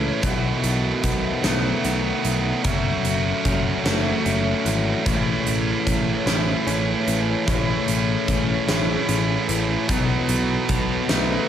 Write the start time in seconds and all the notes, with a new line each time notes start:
Already playing: A2 E3 A3 C#4 E4 G#4 C#5
0.22 B1 B2 D#3 F#3 B3 A4 E5, kick, closed hi-hat
0.26 F#4
0.64 B1, closed hi-hat
1.04 B1 B3, kick, closed hi-hat
1.43 B1 D#3 F#3 A3 B3 F#4, snare, closed hi-hat
1.47 B2
1.84 B1 B3, closed hi-hat
2.25 B1, closed hi-hat
2.64 F#1 F#2 F#3 A3 C#4 F#4, kick, closed hi-hat
2.68 F#4
3.05 F#1, closed hi-hat
3.45 F#1 C#4, kick, closed hi-hat
3.84 F#1 F#3 A3 C#4 F#4, snare, closed hi-hat
4.25 F#1 C#4, closed hi-hat
4.65 G#1 E3, closed hi-hat
5.04 A1 A2 E3 A3 C#4 E4 G#4 C#5, kick, closed hi-hat
5.46 A1, closed hi-hat
5.86 A1 C#4, kick, closed hi-hat
6.26 A1 A2 E3 A3 C#4 E4, snare, closed hi-hat
6.67 A1 C#4, closed hi-hat
7.07 A1 E3, closed hi-hat
7.46 A1 A2 E3 A3 C#4, kick, closed hi-hat
7.50 E4
7.87 A1, closed hi-hat
8.28 A1 C#4, kick, closed hi-hat
8.67 A1 A2 E3 A3 C#4 E4, snare, closed hi-hat
9.09 A1 C#4, closed hi-hat
9.49 A1 E3, closed hi-hat
9.88 B1 B2 F#3 B3 A4 B4, kick, closed hi-hat
9.92 D#4
10.29 B1, closed hi-hat
10.69 B1 B3, kick, closed hi-hat
11.09 B1 F#3 A3 B3 D#4, snare, closed hi-hat
11.13 B2